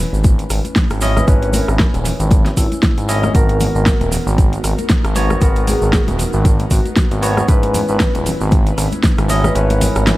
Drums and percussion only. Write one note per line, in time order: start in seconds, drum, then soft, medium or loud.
0.14 shaker soft
0.24 kick loud
0.24 closed hi-hat medium
0.24 high conga medium
0.24 shaker medium
0.39 closed hi-hat medium
0.39 shaker soft
0.50 cross-stick medium
0.50 open hi-hat loud
0.50 shaker loud
0.64 closed hi-hat soft
0.64 high conga medium
0.64 shaker soft
0.76 kick loud
0.76 snare loud
0.76 closed hi-hat medium
0.76 shaker medium
0.90 cross-stick medium
0.90 closed hi-hat medium
0.90 shaker soft
1.01 open hi-hat loud
1.01 muted conga soft
1.01 shaker loud
1.17 cross-stick medium
1.17 high conga loud
1.17 low conga medium
1.17 shaker soft
1.28 kick loud
1.28 closed hi-hat medium
1.28 shaker soft
1.42 closed hi-hat soft
1.42 shaker soft
1.53 open hi-hat loud
1.53 high conga loud
1.53 shaker medium
1.68 cross-stick medium
1.68 shaker soft
1.79 kick loud
1.79 snare loud
1.79 closed hi-hat medium
1.79 shaker medium
1.94 closed hi-hat medium
1.94 muted conga medium
1.94 high conga medium
1.94 shaker soft
2.05 open hi-hat medium
2.05 low conga medium
2.05 shaker loud
2.20 closed hi-hat soft
2.20 shaker soft
2.31 kick loud
2.31 closed hi-hat medium
2.31 high conga medium
2.31 shaker medium
2.46 snare soft
2.46 closed hi-hat medium
2.46 muted conga medium
2.46 shaker soft
2.57 kick medium
2.57 open hi-hat loud
2.57 shaker loud
2.72 closed hi-hat soft
2.72 high conga medium
2.72 shaker soft
2.83 kick loud
2.83 snare loud
2.83 closed hi-hat medium
2.83 shaker medium
2.98 closed hi-hat medium
2.98 shaker soft
3.09 open hi-hat loud
3.09 shaker loud
3.23 cross-stick medium
3.23 high conga loud
3.23 shaker soft
3.35 kick loud
3.35 closed hi-hat medium
3.35 shaker medium
3.49 closed hi-hat soft
3.49 muted conga medium
3.49 shaker soft
3.60 open hi-hat loud
3.60 high conga medium
3.60 low conga medium
3.60 shaker medium
3.75 shaker soft
3.86 kick loud
3.86 snare loud
3.86 closed hi-hat medium
3.86 shaker medium
4.01 closed hi-hat medium
4.01 muted conga medium
4.01 high conga medium
4.01 shaker soft
4.12 open hi-hat loud
4.12 low conga medium
4.12 shaker loud
4.27 shaker soft
4.38 kick loud
4.38 closed hi-hat medium
4.38 high conga loud
4.38 shaker soft
4.53 closed hi-hat medium
4.53 shaker soft
4.64 cross-stick medium
4.64 open hi-hat loud
4.64 shaker medium
4.78 closed hi-hat soft
4.78 high conga medium
4.78 shaker soft
4.89 kick loud
4.89 snare loud
4.89 closed hi-hat medium
4.89 shaker medium
5.04 cross-stick medium
5.04 closed hi-hat medium
5.04 shaker soft
5.15 open hi-hat medium
5.15 muted conga medium
5.15 shaker medium
5.30 cross-stick medium
5.30 high conga loud
5.30 low conga medium
5.30 shaker soft
5.41 kick loud
5.41 closed hi-hat medium
5.41 shaker medium
5.56 closed hi-hat medium
5.56 shaker soft
5.67 open hi-hat loud
5.67 high conga medium
5.67 shaker medium
5.82 shaker soft
5.93 kick loud
5.93 snare loud
5.93 closed hi-hat medium
5.93 shaker medium
6.07 closed hi-hat medium
6.07 muted conga medium
6.07 high conga medium
6.07 shaker soft
6.19 open hi-hat medium
6.19 low conga medium
6.19 shaker medium
6.33 shaker soft
6.45 kick loud
6.45 closed hi-hat medium
6.45 high conga medium
6.45 shaker medium
6.60 closed hi-hat medium
6.60 muted conga medium
6.60 shaker soft
6.71 kick medium
6.71 open hi-hat loud
6.71 shaker medium
6.85 closed hi-hat soft
6.85 high conga medium
6.85 shaker soft
6.96 kick loud
6.96 snare loud
6.96 closed hi-hat medium
6.96 shaker soft
7.11 closed hi-hat medium
7.11 shaker soft
7.23 open hi-hat medium
7.23 shaker medium
7.37 cross-stick medium
7.37 high conga medium
7.37 shaker soft
7.48 kick loud
7.48 closed hi-hat medium
7.48 shaker medium
7.63 closed hi-hat medium
7.63 muted conga medium
7.63 shaker soft
7.74 open hi-hat loud
7.74 high conga medium
7.74 low conga medium
7.74 shaker medium
7.88 shaker soft
8.00 kick loud
8.00 snare loud
8.00 closed hi-hat medium
8.00 shaker medium
8.15 closed hi-hat medium
8.15 muted conga medium
8.15 high conga medium
8.15 shaker soft
8.26 open hi-hat medium
8.26 low conga medium
8.26 shaker medium
8.41 shaker soft
8.51 kick loud
8.51 closed hi-hat medium
8.51 high conga medium
8.51 shaker soft
8.67 closed hi-hat medium
8.67 shaker soft
8.78 cross-stick medium
8.78 open hi-hat loud
8.78 shaker medium
8.92 closed hi-hat soft
8.92 high conga medium
8.92 shaker soft
9.03 kick loud
9.03 snare loud
9.03 closed hi-hat medium
9.03 shaker medium
9.18 cross-stick medium
9.18 closed hi-hat medium
9.18 shaker soft
9.29 open hi-hat medium
9.29 muted conga medium
9.29 shaker medium
9.44 cross-stick medium
9.44 high conga medium
9.44 low conga medium
9.44 shaker soft
9.55 closed hi-hat medium
9.55 shaker soft
9.70 closed hi-hat medium
9.70 muted conga medium
9.70 shaker soft
9.81 open hi-hat loud
9.81 high conga loud
9.81 low conga medium
9.81 shaker medium
9.95 cross-stick medium
9.95 closed hi-hat soft
9.95 shaker soft
10.07 snare loud
10.07 closed hi-hat medium
10.07 shaker soft